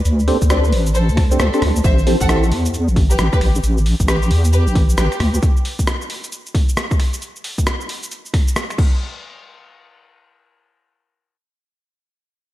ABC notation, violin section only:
X:1
M:4/4
L:1/16
Q:"Swing 16ths" 1/4=134
K:Am
V:1 name="Violin section"
z4 [Bd]2 z2 [Ac]2 z2 [Ac]2 z2 | [ce] z2 [A^f] z6 z [GB] z [GB] z2 | z4 [GB]2 z2 [GB]2 z2 [GB]2 z2 | z16 |
z16 | z16 | z16 |]